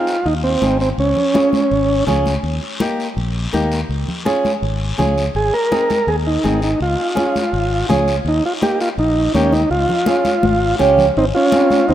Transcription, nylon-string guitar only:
0, 0, Header, 1, 2, 480
1, 0, Start_track
1, 0, Key_signature, -4, "major"
1, 0, Tempo, 363416
1, 1305, Time_signature, 4, 2, 24, 8
1, 15773, End_track
2, 0, Start_track
2, 0, Title_t, "Nylon-string guitar"
2, 0, Program_c, 0, 24
2, 0, Note_on_c, 0, 60, 65
2, 0, Note_on_c, 0, 63, 60
2, 0, Note_on_c, 0, 68, 65
2, 194, Note_off_c, 0, 60, 0
2, 200, Note_off_c, 0, 68, 0
2, 201, Note_off_c, 0, 63, 0
2, 808, Note_on_c, 0, 60, 65
2, 818, Note_on_c, 0, 63, 64
2, 830, Note_on_c, 0, 68, 69
2, 1153, Note_off_c, 0, 60, 0
2, 1158, Note_off_c, 0, 63, 0
2, 1163, Note_off_c, 0, 68, 0
2, 1766, Note_on_c, 0, 61, 60
2, 1776, Note_on_c, 0, 65, 63
2, 1782, Note_on_c, 0, 68, 74
2, 2112, Note_off_c, 0, 61, 0
2, 2117, Note_off_c, 0, 65, 0
2, 2120, Note_off_c, 0, 68, 0
2, 2730, Note_on_c, 0, 61, 81
2, 2737, Note_on_c, 0, 65, 67
2, 2747, Note_on_c, 0, 68, 87
2, 3074, Note_off_c, 0, 61, 0
2, 3077, Note_off_c, 0, 65, 0
2, 3082, Note_off_c, 0, 68, 0
2, 3699, Note_on_c, 0, 58, 78
2, 3707, Note_on_c, 0, 63, 71
2, 3714, Note_on_c, 0, 67, 87
2, 4039, Note_off_c, 0, 58, 0
2, 4043, Note_off_c, 0, 63, 0
2, 4046, Note_off_c, 0, 67, 0
2, 4658, Note_on_c, 0, 58, 85
2, 4667, Note_on_c, 0, 63, 70
2, 4673, Note_on_c, 0, 67, 88
2, 4998, Note_off_c, 0, 58, 0
2, 5003, Note_off_c, 0, 63, 0
2, 5006, Note_off_c, 0, 67, 0
2, 5617, Note_on_c, 0, 61, 82
2, 5624, Note_on_c, 0, 65, 70
2, 5627, Note_on_c, 0, 68, 90
2, 5958, Note_off_c, 0, 61, 0
2, 5961, Note_off_c, 0, 68, 0
2, 5962, Note_off_c, 0, 65, 0
2, 6574, Note_on_c, 0, 61, 73
2, 6581, Note_on_c, 0, 65, 72
2, 6587, Note_on_c, 0, 68, 89
2, 6917, Note_off_c, 0, 61, 0
2, 6921, Note_off_c, 0, 65, 0
2, 6923, Note_off_c, 0, 68, 0
2, 7543, Note_on_c, 0, 60, 64
2, 7550, Note_on_c, 0, 63, 59
2, 7550, Note_on_c, 0, 68, 70
2, 7883, Note_off_c, 0, 60, 0
2, 7883, Note_off_c, 0, 63, 0
2, 7885, Note_off_c, 0, 68, 0
2, 8499, Note_on_c, 0, 60, 62
2, 8503, Note_on_c, 0, 63, 59
2, 8512, Note_on_c, 0, 68, 75
2, 8840, Note_off_c, 0, 60, 0
2, 8843, Note_off_c, 0, 63, 0
2, 8844, Note_off_c, 0, 68, 0
2, 9443, Note_on_c, 0, 61, 67
2, 9451, Note_on_c, 0, 65, 60
2, 9457, Note_on_c, 0, 68, 72
2, 9792, Note_off_c, 0, 61, 0
2, 9794, Note_off_c, 0, 65, 0
2, 9799, Note_off_c, 0, 68, 0
2, 10417, Note_on_c, 0, 61, 82
2, 10422, Note_on_c, 0, 65, 74
2, 10428, Note_on_c, 0, 68, 87
2, 10760, Note_off_c, 0, 61, 0
2, 10760, Note_off_c, 0, 65, 0
2, 10764, Note_off_c, 0, 68, 0
2, 11378, Note_on_c, 0, 58, 69
2, 11386, Note_on_c, 0, 63, 62
2, 11395, Note_on_c, 0, 67, 69
2, 11719, Note_off_c, 0, 58, 0
2, 11723, Note_off_c, 0, 63, 0
2, 11726, Note_off_c, 0, 67, 0
2, 12347, Note_on_c, 0, 58, 69
2, 12354, Note_on_c, 0, 63, 60
2, 12363, Note_on_c, 0, 67, 77
2, 12683, Note_off_c, 0, 58, 0
2, 12684, Note_off_c, 0, 63, 0
2, 12691, Note_off_c, 0, 67, 0
2, 13301, Note_on_c, 0, 61, 68
2, 13307, Note_on_c, 0, 68, 70
2, 13309, Note_on_c, 0, 65, 61
2, 13639, Note_off_c, 0, 61, 0
2, 13641, Note_off_c, 0, 68, 0
2, 13643, Note_off_c, 0, 65, 0
2, 14252, Note_on_c, 0, 61, 83
2, 14256, Note_on_c, 0, 65, 73
2, 14263, Note_on_c, 0, 67, 88
2, 14267, Note_on_c, 0, 77, 61
2, 14594, Note_off_c, 0, 61, 0
2, 14598, Note_off_c, 0, 65, 0
2, 14599, Note_off_c, 0, 67, 0
2, 14708, Note_off_c, 0, 77, 0
2, 15218, Note_on_c, 0, 60, 68
2, 15219, Note_on_c, 0, 63, 63
2, 15222, Note_on_c, 0, 68, 75
2, 15555, Note_off_c, 0, 63, 0
2, 15556, Note_off_c, 0, 60, 0
2, 15558, Note_off_c, 0, 68, 0
2, 15773, End_track
0, 0, End_of_file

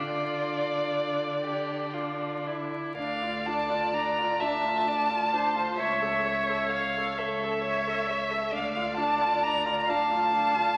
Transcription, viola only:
0, 0, Header, 1, 2, 480
1, 0, Start_track
1, 0, Key_signature, -1, "minor"
1, 0, Tempo, 1056338
1, 1355, Tempo, 956938
1, 1356, Time_signature, 6, 3, 24, 8
1, 1835, Tempo, 924499
1, 3755, Tempo, 891530
1, 5443, End_track
2, 0, Start_track
2, 0, Title_t, "Viola"
2, 0, Program_c, 0, 41
2, 0, Note_on_c, 0, 62, 34
2, 1238, Note_off_c, 0, 62, 0
2, 1354, Note_on_c, 0, 62, 36
2, 1477, Note_on_c, 0, 65, 35
2, 1484, Note_off_c, 0, 62, 0
2, 1600, Note_on_c, 0, 62, 38
2, 1608, Note_off_c, 0, 65, 0
2, 1715, Note_on_c, 0, 65, 37
2, 1723, Note_off_c, 0, 62, 0
2, 1835, Note_off_c, 0, 65, 0
2, 1838, Note_on_c, 0, 62, 37
2, 1963, Note_on_c, 0, 65, 34
2, 1971, Note_off_c, 0, 62, 0
2, 2083, Note_on_c, 0, 62, 38
2, 2090, Note_off_c, 0, 65, 0
2, 2207, Note_on_c, 0, 65, 37
2, 2215, Note_off_c, 0, 62, 0
2, 2320, Note_off_c, 0, 65, 0
2, 2323, Note_on_c, 0, 62, 39
2, 2439, Note_on_c, 0, 65, 36
2, 2447, Note_off_c, 0, 62, 0
2, 2558, Note_on_c, 0, 62, 40
2, 2566, Note_off_c, 0, 65, 0
2, 2676, Note_on_c, 0, 65, 36
2, 2684, Note_off_c, 0, 62, 0
2, 2793, Note_off_c, 0, 65, 0
2, 2796, Note_on_c, 0, 73, 39
2, 2916, Note_on_c, 0, 69, 39
2, 2924, Note_off_c, 0, 73, 0
2, 3038, Note_on_c, 0, 73, 41
2, 3045, Note_off_c, 0, 69, 0
2, 3159, Note_on_c, 0, 69, 37
2, 3167, Note_off_c, 0, 73, 0
2, 3281, Note_off_c, 0, 69, 0
2, 3283, Note_on_c, 0, 73, 34
2, 3411, Note_on_c, 0, 69, 36
2, 3419, Note_off_c, 0, 73, 0
2, 3525, Note_on_c, 0, 73, 39
2, 3532, Note_off_c, 0, 69, 0
2, 3652, Note_on_c, 0, 69, 35
2, 3660, Note_off_c, 0, 73, 0
2, 3759, Note_off_c, 0, 69, 0
2, 3762, Note_on_c, 0, 73, 37
2, 3883, Note_on_c, 0, 69, 38
2, 3891, Note_off_c, 0, 73, 0
2, 4003, Note_on_c, 0, 73, 41
2, 4011, Note_off_c, 0, 69, 0
2, 4117, Note_on_c, 0, 69, 38
2, 4125, Note_off_c, 0, 73, 0
2, 4235, Note_off_c, 0, 69, 0
2, 4237, Note_on_c, 0, 62, 37
2, 4359, Note_on_c, 0, 65, 41
2, 4368, Note_off_c, 0, 62, 0
2, 4476, Note_on_c, 0, 62, 45
2, 4484, Note_off_c, 0, 65, 0
2, 4602, Note_on_c, 0, 65, 41
2, 4610, Note_off_c, 0, 62, 0
2, 4718, Note_off_c, 0, 65, 0
2, 4722, Note_on_c, 0, 62, 38
2, 4844, Note_on_c, 0, 65, 41
2, 4852, Note_off_c, 0, 62, 0
2, 4970, Note_on_c, 0, 62, 42
2, 4978, Note_off_c, 0, 65, 0
2, 5091, Note_on_c, 0, 65, 36
2, 5099, Note_off_c, 0, 62, 0
2, 5207, Note_off_c, 0, 65, 0
2, 5211, Note_on_c, 0, 62, 42
2, 5327, Note_on_c, 0, 65, 40
2, 5335, Note_off_c, 0, 62, 0
2, 5443, Note_off_c, 0, 65, 0
2, 5443, End_track
0, 0, End_of_file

